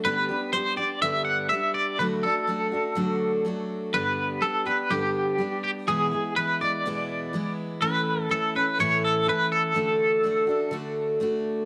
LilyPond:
<<
  \new Staff \with { instrumentName = "Clean electric guitar" } { \time 4/4 \key g \major \tempo 4 = 124 b'4 c''8 d''8 e''8 fis''8 e''8 d''8 | b'8 a'2. r8 | b'4 a'8 b'8 g'4. g'8 | gis'4 b'8 d''2 r8 |
b'4 a'8 b'8 cis''8 a'8 b'8 a'8~ | a'2. r4 | }
  \new Staff \with { instrumentName = "Steel-string acoustic guitar" } { \time 4/4 \key g \major <g, d g b d' g'>8 <g b d' g'>8 <g b d' g'>8 <g b d' g'>8 <g, d g b d' g'>4 <g b d' g'>4 | <d fis a d' fis'>8 <a d' fis'>8 <fis a d' fis'>8 <a d' fis'>8 <d fis a d' fis'>4 <fis a d' fis'>4 | <g, d g b d' g'>4 <g b d' g'>8 <g b d' g'>8 <g, d g b d' g'>4 <g b d' g'>4 | <e, b, e gis b e'>8 <e b e'>8 <e gis b e'>8 <e gis b e'>8 <e, b, e gis b e'>4 <e gis b e'>4 |
<a, e a cis' e'>4 <e a cis' e'>8 <a cis' e'>8 <a, e a cis' e'>4 <e a cis' e'>4 | <d a d' fis'>4 <d a d' fis'>8 <a d' fis'>8 <d a d' fis'>4 <d a d' fis'>4 | }
>>